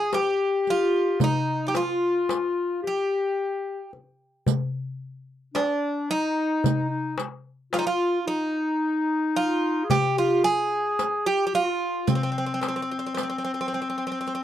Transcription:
0.00 0.14 G#4 medium
0.12 1.21 G4 medium
0.12 0.69 G4 medium
0.12 riq soft
0.12 darbuka tek medium
0.67 1.23 F4 medium
0.67 riq soft
0.67 darbuka ka soft
1.20 1.76 D#4 medium
1.20 1.68 D#4 medium
1.20 riq medium
1.20 darbuka dum medium
1.68 1.75 G4 medium
1.74 2.82 F4 medium
1.74 2.87 F4 medium
1.74 riq soft
1.74 darbuka tek medium
2.29 riq soft
2.29 darbuka tek medium
2.83 3.88 G4 medium
2.83 darbuka ka soft
2.87 3.90 G4 medium
3.93 darbuka ka soft
4.47 riq medium
4.47 darbuka dum medium
5.54 6.12 D4 medium
5.54 6.11 D4 medium
5.54 riq soft
5.54 darbuka tek medium
6.10 6.89 D#4 medium
6.10 7.15 D#4 loud
6.10 riq soft
6.10 darbuka ka soft
6.64 riq medium
6.64 darbuka dum medium
6.89 7.16 D#4 medium
7.18 riq soft
7.18 darbuka tek medium
7.73 7.86 F4 medium
7.73 7.78 F4 medium
7.73 riq soft
7.73 darbuka tek medium
7.79 7.86 D#4 medium
7.87 8.27 F4 medium
7.87 8.18 F4 medium
8.21 8.27 F4 medium
8.26 9.86 D#4 medium
8.26 9.36 D#4 medium
8.26 darbuka ka soft
9.36 9.87 F4 loud
9.36 darbuka ka soft
9.84 9.92 G#4 medium
9.90 10.45 G4 medium
9.90 10.18 G4 loud
9.90 riq medium
9.90 darbuka dum medium
10.18 10.44 F4 medium
10.44 11.28 G#4 medium
10.44 11.26 G#4 loud
10.99 riq soft
10.99 darbuka tek medium
11.26 11.45 G4 medium
11.26 11.55 G4 medium
11.47 11.54 G4 medium
11.53 12.10 F4 medium
11.53 12.10 F4 loud
11.53 riq soft
11.53 darbuka ka soft
12.07 12.14 C4 medium
12.07 14.44 C4 medium
12.07 riq medium
12.07 darbuka dum medium
12.15 12.22 C4 medium
12.23 12.30 C4 medium
12.32 12.37 C4 medium
12.38 12.45 C4 medium
12.46 12.53 C4 medium
12.54 12.60 C4 medium
12.61 12.67 C4 medium
12.61 riq soft
12.61 darbuka tek medium
12.68 12.75 C4 medium
12.76 12.81 C4 medium
12.82 12.90 C4 medium
12.91 12.98 C4 medium
12.99 13.05 C4 medium
13.06 13.13 C4 medium
13.14 13.21 C4 medium
13.14 riq medium
13.14 darbuka tek medium
13.23 13.28 C4 soft
13.30 13.36 C4 medium
13.38 13.43 C4 soft
13.45 13.51 C4 medium
13.54 13.59 C4 soft
13.61 13.66 C4 medium
13.68 13.73 C4 medium
13.73 13.81 C4 medium
13.73 riq soft
13.73 darbuka ka soft
13.82 13.88 C4 soft
13.90 13.96 C4 soft
13.98 14.04 C4 soft
14.07 14.10 C4 medium
14.12 14.18 C4 soft
14.21 14.26 C4 medium
14.27 14.34 C4 soft
14.27 riq soft
14.35 14.41 C4 medium

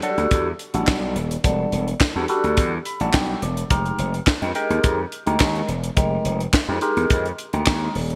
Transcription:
0.02 0.10 F#3 medium
0.02 0.46 D4 medium
0.02 0.47 F#4 medium
0.02 0.47 A4 loud
0.02 closed hi-hat medium
0.09 0.50 G3 loud
0.18 0.27 D2 medium
0.18 closed hi-hat soft
0.31 0.51 E2 loud
0.31 kick loud
0.31 closed hi-hat loud
0.59 closed hi-hat medium
0.74 0.84 A1 medium
0.74 1.16 G3 medium
0.74 1.16 D4 medium
0.74 1.17 F#4 medium
0.74 1.17 A4 medium
0.74 closed hi-hat soft
0.87 1.17 B1 medium
0.87 kick loud
0.87 snare loud
0.87 clap medium
1.16 1.36 D#1 medium
1.16 closed hi-hat medium
1.31 closed hi-hat medium
1.44 1.64 E1 loud
1.44 1.88 G3 medium
1.44 1.88 D4 medium
1.44 1.88 F#4 medium
1.44 1.88 A4 medium
1.44 kick loud
1.44 closed hi-hat medium
1.72 1.93 E1 medium
1.72 closed hi-hat medium
1.88 closed hi-hat soft
2.00 kick loud
2.00 snare loud
2.00 clap medium
2.16 2.25 E2 medium
2.16 2.24 G3 medium
2.16 2.24 D4 medium
2.16 2.24 F#4 medium
2.16 2.24 A4 medium
2.28 2.73 G3 loud
2.28 2.73 D4 medium
2.28 2.73 F#4 medium
2.28 2.73 A4 loud
2.28 closed hi-hat medium
2.44 2.58 D2 medium
2.44 closed hi-hat soft
2.57 2.78 E2 loud
2.57 kick loud
2.57 closed hi-hat medium
2.85 3.00 B5 medium
2.85 closed hi-hat medium
3.00 3.10 A1 medium
3.00 3.43 G3 medium
3.00 3.43 D4 medium
3.00 3.43 F#4 medium
3.00 3.43 A4 medium
3.00 3.13 A5 medium
3.00 closed hi-hat soft
3.13 3.34 B1 loud
3.13 3.40 G5 medium
3.13 kick loud
3.13 snare loud
3.13 clap medium
3.42 3.62 E1 medium
3.42 3.69 D5 medium
3.42 closed hi-hat medium
3.57 closed hi-hat medium
3.70 3.91 F1 loud
3.70 4.14 G#3 medium
3.70 4.14 D#4 medium
3.70 4.14 G4 medium
3.70 4.15 A#4 loud
3.70 kick loud
3.70 closed hi-hat medium
3.86 closed hi-hat soft
3.99 4.19 F1 medium
3.99 closed hi-hat medium
4.14 closed hi-hat soft
4.27 muted slap bass stroke soft
4.27 kick loud
4.27 snare loud
4.27 clap medium
4.42 4.52 F2 medium
4.42 4.50 G#3 medium
4.42 4.50 D#4 medium
4.42 4.50 G4 medium
4.42 4.51 A#4 medium
4.42 closed hi-hat soft
4.55 4.99 G#3 medium
4.55 4.99 D#4 loud
4.55 4.99 G4 medium
4.55 4.99 A#4 loud
4.55 closed hi-hat medium
4.70 4.80 D#2 medium
4.70 closed hi-hat soft
4.84 5.04 F2 loud
4.84 kick loud
4.84 closed hi-hat medium
5.12 closed hi-hat medium
5.26 5.37 D2 medium
5.26 5.69 G#3 medium
5.26 5.69 D#4 medium
5.26 5.69 G4 medium
5.26 5.69 A#4 medium
5.26 closed hi-hat soft
5.40 5.61 D#2 medium
5.40 kick loud
5.40 snare loud
5.40 clap medium
5.55 closed hi-hat soft
5.68 5.89 E1 medium
5.68 closed hi-hat medium
5.84 closed hi-hat medium
5.97 6.17 F1 loud
5.97 6.41 G#3 medium
5.97 6.41 D#4 medium
5.97 6.41 G4 medium
5.97 6.41 A#4 loud
5.97 kick loud
5.97 closed hi-hat loud
6.25 6.45 F1 loud
6.25 closed hi-hat medium
6.40 closed hi-hat soft
6.53 muted slap bass stroke soft
6.53 kick loud
6.53 snare loud
6.53 clap medium
6.68 6.78 F2 medium
6.68 6.77 G#3 medium
6.68 6.77 D#4 medium
6.68 6.77 G4 medium
6.68 6.77 A#4 medium
6.81 7.26 G#3 loud
6.81 7.26 D#4 medium
6.81 7.26 G4 medium
6.81 7.26 A#4 loud
6.81 closed hi-hat medium
6.97 7.06 E2 loud
6.97 closed hi-hat soft
7.10 7.31 F2 loud
7.10 kick loud
7.10 closed hi-hat medium
7.25 closed hi-hat soft
7.38 closed hi-hat medium
7.53 7.63 D2 medium
7.53 7.96 G#3 medium
7.53 7.96 D#4 medium
7.53 7.96 G4 medium
7.53 7.96 A#4 medium
7.53 closed hi-hat soft
7.66 7.87 D#2 medium
7.66 kick loud
7.66 snare loud
7.66 clap medium
7.95 8.15 D#1 medium
7.95 open hi-hat medium
8.10 closed hi-hat medium

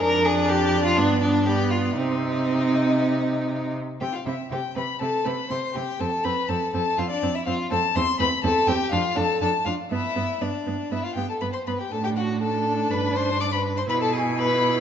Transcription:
0.01 0.99 F2 medium
0.01 1.00 D4 medium
0.01 0.27 A#4 loud
0.01 1.44 D5 medium
0.25 0.50 G#4 loud
0.48 0.85 G4 loud
0.85 0.98 F4 loud
0.97 1.96 G2 medium
0.97 1.47 B3 medium
0.97 1.20 D4 loud
1.21 1.47 D4 medium
1.46 1.99 B3 medium
1.46 1.72 G4 loud
1.46 1.99 D5 medium
1.70 1.96 F4 medium
1.97 3.76 C3 medium
1.97 3.81 C4 medium
1.97 3.72 D#4 medium
1.97 3.75 D#5 medium
4.00 4.09 C3 medium
4.00 4.09 C4 soft
4.00 4.06 G4 medium
4.00 4.17 G5 medium
4.12 4.18 F4 soft
4.12 4.27 F5 medium
4.26 4.34 C3 soft
4.26 4.35 C4 soft
4.26 4.34 E4 medium
4.26 4.51 E5 medium
4.51 4.59 C3 medium
4.51 4.60 C4 soft
4.51 4.60 G4 medium
4.51 4.75 G5 medium
4.75 4.84 C3 soft
4.75 4.83 C4 soft
4.75 4.84 B4 medium
4.75 5.00 B5 medium
5.00 5.10 C3 soft
5.00 5.08 C4 soft
5.00 5.26 A4 medium
5.00 5.28 A5 medium
5.24 5.34 C3 medium
5.24 5.33 C4 soft
5.24 5.48 B4 medium
5.24 5.52 B5 medium
5.49 5.59 C3 soft
5.49 5.58 C4 soft
5.49 5.74 C5 medium
5.49 5.77 C6 medium
5.75 5.84 C3 soft
5.75 5.83 C4 soft
5.75 6.01 G4 medium
5.75 6.02 G5 medium
5.99 6.08 F2 medium
5.99 6.08 C4 medium
5.99 6.26 A4 medium
5.99 6.25 A5 medium
6.24 6.33 F2 medium
6.24 6.32 C4 medium
6.24 6.51 B4 medium
6.24 6.50 B5 medium
6.49 6.58 F2 medium
6.49 6.57 C4 medium
6.49 6.73 A4 medium
6.49 6.73 A5 medium
6.73 6.82 F2 medium
6.73 6.82 C4 medium
6.73 6.97 A4 medium
6.73 7.00 A5 medium
6.97 7.06 F2 medium
6.97 7.06 C4 soft
6.97 7.02 F4 medium
6.97 7.09 F5 medium
7.10 7.34 D4 medium
7.10 7.36 D5 medium
7.23 7.31 F2 medium
7.23 7.31 C4 medium
7.35 7.46 E4 medium
7.35 7.45 E5 medium
7.46 7.55 F2 medium
7.46 7.55 C4 medium
7.46 7.70 F4 medium
7.46 7.54 F5 medium
7.71 7.80 F2 medium
7.71 7.79 C4 medium
7.71 7.79 A4 medium
7.71 7.97 A5 loud
7.95 8.04 E2 medium
7.95 8.04 C4 medium
7.95 8.03 C5 medium
7.95 8.19 C6 loud
8.19 8.28 E2 medium
8.19 8.28 C4 medium
8.19 8.27 B4 medium
8.19 8.43 B5 medium
8.44 8.52 E2 medium
8.44 8.52 C4 medium
8.44 8.70 A4 medium
8.44 8.69 A5 loud
8.67 8.76 E2 medium
8.67 8.76 C4 medium
8.67 8.93 G4 medium
8.67 8.91 G5 loud
8.92 9.00 F2 medium
8.92 9.00 D4 medium
8.92 9.18 F4 medium
8.92 9.18 F5 medium
9.15 9.25 F2 medium
9.15 9.23 D4 medium
9.15 9.41 A4 medium
9.15 9.40 A5 loud
9.41 9.49 F2 medium
9.41 9.49 D4 medium
9.41 9.49 A4 medium
9.41 9.65 A5 medium
9.65 9.73 F2 medium
9.65 9.75 D4 medium
9.65 9.73 F4 medium
9.65 9.73 F5 medium
9.91 9.99 G2 medium
9.91 10.00 B3 medium
9.91 10.43 E4 medium
9.91 10.43 E5 medium
10.15 10.24 G2 medium
10.15 10.23 B3 medium
10.41 10.49 G2 medium
10.41 10.49 B3 soft
10.41 10.91 D4 medium
10.41 10.93 D5 medium
10.66 10.74 G2 medium
10.66 10.74 B3 soft
10.91 10.99 G2 soft
10.91 11.00 B3 soft
10.91 11.05 E4 medium
10.91 11.03 E5 medium
11.03 11.17 F4 medium
11.03 11.14 F5 medium
11.15 11.24 G2 medium
11.15 11.25 B3 soft
11.15 11.28 G4 medium
11.15 11.28 G5 medium
11.29 11.42 A4 medium
11.29 11.34 A5 medium
11.41 11.50 G2 soft
11.41 11.49 B3 soft
11.41 11.52 B4 medium
11.41 11.46 B5 medium
11.53 11.66 C5 soft
11.53 11.58 C6 medium
11.67 11.75 G2 soft
11.67 11.76 B3 soft
11.67 11.79 B4 medium
11.67 11.72 B5 medium
11.79 11.85 G4 medium
11.79 11.93 G5 medium
11.92 12.87 A2 medium
11.92 13.85 D4 medium
11.92 11.97 A4 medium
11.92 12.04 A5 medium
12.04 12.09 G4 medium
12.04 12.09 G5 medium
12.16 12.40 F#4 medium
12.16 12.24 F#5 medium
12.41 12.92 A4 medium
12.41 12.93 A5 medium
12.91 13.87 G2 medium
12.91 13.17 B4 medium
12.91 13.17 B5 medium
13.16 13.40 C5 medium
13.16 13.42 C6 medium
13.40 13.45 D5 medium
13.40 13.52 D6 loud
13.52 13.79 B4 medium
13.52 13.60 B5 medium
13.77 13.88 C5 medium
13.77 13.82 C6 medium
13.88 14.80 B2 medium
13.88 14.80 E4 medium
13.88 14.01 B4 medium
13.88 13.94 B5 loud
14.01 14.13 A4 medium
14.01 14.15 A5 medium
14.13 14.21 G#4 medium
14.13 14.40 G#5 medium
14.37 14.80 B4 medium
14.37 14.80 B5 medium

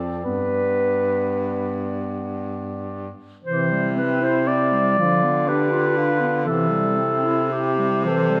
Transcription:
0.00 0.24 F2 soft
0.00 0.27 C4 soft
0.00 3.08 D5 soft
0.24 3.10 G2 soft
0.24 3.14 B3 soft
0.24 1.84 B4 medium
3.44 4.94 C3 medium
3.44 3.73 E3 soft
3.44 4.95 E4 medium
3.44 3.93 C5 medium
3.71 3.98 G3 soft
3.96 4.23 C4 soft
3.96 4.25 B4 medium
4.22 4.48 E4 soft
4.22 4.49 C5 medium
4.47 4.74 C4 soft
4.47 5.49 D5 medium
4.72 4.97 G3 soft
4.98 6.45 D3 soft
4.98 5.25 F3 soft
4.98 5.51 F4 soft
5.23 5.50 B3 soft
5.48 5.73 D4 soft
5.48 5.99 G4 medium
5.48 6.45 B4 medium
5.72 5.98 F4 soft
5.97 6.22 D4 soft
5.97 6.47 F4 medium
6.20 6.45 B3 soft
6.45 8.40 C3 medium
6.45 6.72 E3 soft
6.45 8.08 E4 medium
6.45 7.54 A4 medium
6.70 6.98 G3 soft
6.96 7.26 C4 soft
7.24 7.52 E4 soft
7.50 7.80 C4 soft
7.50 8.06 G4 medium
7.78 8.06 G3 soft
8.04 8.31 E3 soft
8.04 8.40 A4 medium
8.04 8.40 C5 medium
8.29 8.40 G3 soft

